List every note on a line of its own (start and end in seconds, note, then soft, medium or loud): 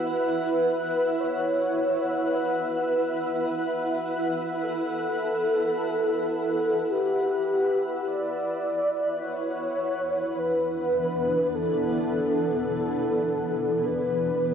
0.00 12.83 E4 medium
0.00 13.83 B4 medium
0.00 9.22 E5 medium
0.00 13.08 F#5 medium
0.06 1.22 B4 loud
1.20 2.37 C#5 loud
2.35 4.05 B4 medium
4.63 6.93 A4 loud
6.91 8.09 G4 loud
8.07 9.24 D5 loud
9.22 14.54 E3 medium
9.22 10.40 C#5 loud
9.68 14.54 B3 medium
9.83 14.54 D4 medium
10.39 11.57 B4 loud
11.55 13.87 A4 loud
13.86 14.54 B4 loud